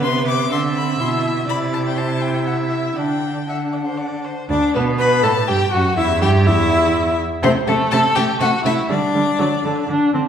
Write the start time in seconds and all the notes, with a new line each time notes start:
Already playing: B3 B4
0.02 C3 C6
0.27 D6
0.51 D3 C4 E5 C6
0.76 B5
0.99 B2 E4 C6
1.48 C3 E4 D5 B5
1.73 A5
1.87 G5
1.96 E4 C5 A5
2.22 G5
2.46 E5 F#5
2.72 E5
2.97 D3 D4 D5 G5
3.48 D4 E5 F#5
3.72 D5
3.86 C5
3.98 D5
4.25 C5
4.50 D2 D4 D5
4.74 B2 B3 B4
4.99 B2 B4 B5
5.23 A2 A4 A5
5.48 G2 G4 G5
5.72 F#2 F#4 F#5
5.97 E2 E4 E5
6.21 G2 G4 G5
6.46 E2 E4 E5
7.43 C3 A3 C4 C5
7.67 C3 A3 A4
7.91 C3 A3 A4 A5
8.15 C3 A3 G4 G5
8.40 C3 A3 F#4 F#5
8.65 C3 A3 E4 E5
8.89 D3 G3 D4 D5
9.14 D3 G3
9.39 D3 F#3
9.63 D3
9.89 D3 D4
10.14 D3 C4